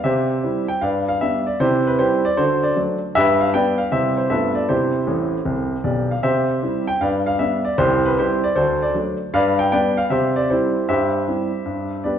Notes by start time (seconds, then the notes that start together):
0.04 C3 G4 C5 E5
0.43 G3 C4 E4
0.68 G5
0.81 G2 B4 D5 F5
1.08 F5
1.21 G3 B3 D4 E5
1.47 D5
1.60 C3 E4 G4 C5
1.87 B4
1.99 G3 C4 E4 G4 C5
2.25 D5
2.37 D3 F#4 A4 C5
2.63 D5
2.76 F#3 A3 D4
3.15 G2 G4 B4 E5
3.41 F5
3.53 G3 B3 D4 B4 D5 G5
3.78 F5
3.91 C3 G3 C4 E4 G4 C5 E5
4.17 C5
4.30 G2 A3 B3 F4 A4 B4 E5
4.55 D5
4.69 C3 E4 G4 C5
5.07 A1 A2
5.45 C2 C3
5.84 B1 B2 G4 D5
6.11 F5
6.23 C3 G4 C5 E5
6.62 G3 C4 E4
6.87 G5
7.01 G2 B4 D5 F5
7.26 F5
7.39 G3 B3 D4 E5
7.65 D5
7.78 C2 E4 G4 C5
8.06 B4
8.18 G3 C4 E4 G4 C5
8.44 D5
8.56 D2 F#4 A4 C5
8.82 D5
8.94 F#3 A3 D4
9.34 G2 B4 D5 F5
9.59 G5
9.72 G3 B3 D4 B4 D5 G5
9.97 F5
10.10 C3 G4 C5 E5
10.36 D5
10.50 G3 C4 E4 G4 C5
10.89 G2 G4 C5 E5
11.28 G3 C4 E4
11.66 G2
12.04 G3 B3 D4 G4 B4 D5